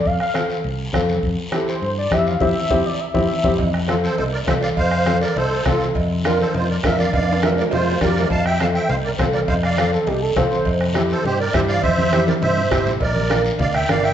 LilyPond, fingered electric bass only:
\new Staff \with { instrumentName = "Fingered electric bass" } { \clef bass \time 4/4 \key f \major \tempo 4 = 204 f,8 r4. c,4 f,4 | f,8 r4. g,4 f,4 | f,8 r8 f,8 r4 f,8 r8 f,8 | f,2 c,4 c,4 |
f,2 c,4 c,4 | f,2 f,4 f,4 | f,2 f,4 f,4 | f,2 c,4 c,4 |
f,2 c,4 c,4 | f,2 g,4 g,4 | f,2 g,4 g,,8 a,,8 | bes,,2 d,4 g,,4 | }